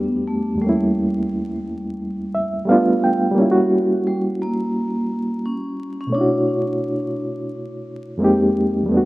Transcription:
0.00 0.54 E2 soft
0.00 0.57 G3 soft
0.00 0.60 A3 medium
0.00 0.29 B3 loud
0.00 0.62 B3 soft
0.00 0.63 D4 medium
0.00 0.63 G4 medium
0.27 0.62 A3 medium
0.55 2.61 E2 medium
0.55 2.62 G3 medium
0.61 2.99 G3 medium
0.61 2.64 A3 medium
0.61 2.65 A#3 medium
0.66 2.67 C#4 medium
0.66 2.68 E4 medium
2.35 2.66 E5 medium
2.65 3.30 G3 medium
2.65 3.36 A3 medium
2.65 3.37 B3 medium
2.65 3.00 F5 medium
2.71 3.38 D4 medium
2.71 3.39 F4 medium
3.04 3.35 G5 medium
3.31 6.06 G3 medium
3.31 6.08 A#3 medium
3.38 6.09 C#4 medium
3.38 6.11 E4 medium
3.45 3.49 F4 medium
3.51 6.16 F#4 medium
4.07 4.22 G3 medium
4.42 5.48 A#3 medium
5.46 5.96 C#4 medium
6.01 6.14 C#4 loud
6.07 8.13 B2 medium
6.07 8.14 A3 medium
6.13 7.47 D4 loud
6.13 8.17 D4 medium
6.13 8.15 C#5 medium
6.18 8.18 E4 medium
6.18 8.20 F#4 medium
8.18 8.87 F2 medium
8.18 8.88 G#3 medium
8.18 8.89 A#3 medium
8.22 8.89 C4 medium
8.22 8.90 D#4 medium
8.22 8.91 G4 medium
8.83 9.05 E2 medium
8.83 9.05 G3 medium
8.89 9.05 A3 medium
8.89 9.05 B3 medium
8.94 9.05 D4 medium
8.94 9.05 F#4 medium

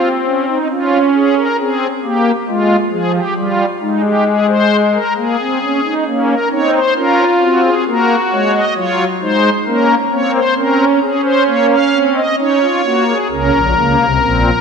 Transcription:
0.00 0.58 C4 medium
0.26 0.45 C#4 medium
0.48 0.67 D#4 medium
0.70 1.47 C#4 medium
0.70 0.98 F4 medium
1.15 1.34 G#4 medium
1.37 1.56 A#4 medium
1.59 1.87 C4 medium
1.59 1.87 G#4 medium
2.03 2.31 A#3 medium
2.03 2.31 G4 medium
2.48 2.76 G#3 medium
2.48 2.76 F4 medium
2.92 3.20 F3 medium
2.92 3.12 G#4 medium
3.14 3.34 G4 medium
3.37 3.65 G3 medium
3.37 3.65 F4 medium
3.81 4.97 G#3 medium
3.81 4.01 D#4 medium
4.04 4.24 G4 medium
4.27 4.46 G#4 medium
4.48 4.76 C5 medium
4.93 5.13 A#4 medium
5.16 5.36 A#3 medium
5.16 5.94 G#4 medium
5.39 5.59 C4 medium
5.61 5.81 C#4 medium
5.84 6.04 D#4 medium
6.06 6.34 A#3 medium
6.06 6.35 C#4 medium
6.28 6.48 A#4 medium
6.51 6.79 C4 medium
6.51 6.79 D#4 medium
6.51 6.71 C#5 medium
6.74 6.94 C5 medium
6.96 7.24 C#4 medium
6.96 7.74 F4 medium
6.96 7.24 A#4 medium
7.42 7.70 C4 medium
7.42 7.61 F#4 medium
7.64 7.84 G#4 medium
7.88 8.15 A#3 medium
7.88 8.65 F#4 medium
7.88 8.15 A#4 medium
8.32 8.60 G#3 medium
8.32 8.51 C#5 medium
8.54 8.74 D#5 medium
8.76 9.04 F#3 medium
8.76 9.04 F4 medium
8.76 9.04 C#5 medium
9.22 9.50 G#3 medium
9.22 9.50 D#4 medium
9.22 9.50 C5 medium
9.66 9.95 A#3 medium
9.66 9.95 C#4 medium
9.66 9.95 A#4 medium
10.12 10.40 A#3 medium
10.12 10.40 C4 medium
10.12 10.31 C#5 medium
10.35 10.54 C5 medium
10.57 10.84 C4 medium
10.57 11.00 C#4 medium
10.57 10.85 A#4 medium
11.02 12.20 C#4 medium
11.02 11.21 G#4 medium
11.24 11.43 C5 medium
11.46 11.75 A#3 medium
11.46 11.66 C#5 medium
11.70 11.98 F5 medium
11.93 12.22 C4 medium
12.16 12.36 D#5 medium
12.38 12.67 C#4 medium
12.38 12.59 D#4 medium
12.38 13.17 C#5 medium
12.61 12.81 F4 medium
12.84 13.13 A#3 medium
12.84 13.04 F#4 medium
13.08 13.27 G#4 medium
13.31 13.50 C#2 medium
13.31 13.51 C#3 medium
13.31 13.59 C#4 medium
13.31 14.61 A#4 medium
13.54 13.73 A#1 medium
13.54 13.73 A#2 medium
13.76 13.96 C#2 medium
13.76 13.96 C#3 medium
13.76 14.05 A#3 medium
13.98 14.18 C2 medium
13.98 14.18 C3 medium
14.22 14.50 A#1 medium
14.22 14.50 A#2 medium
14.22 14.50 C4 medium

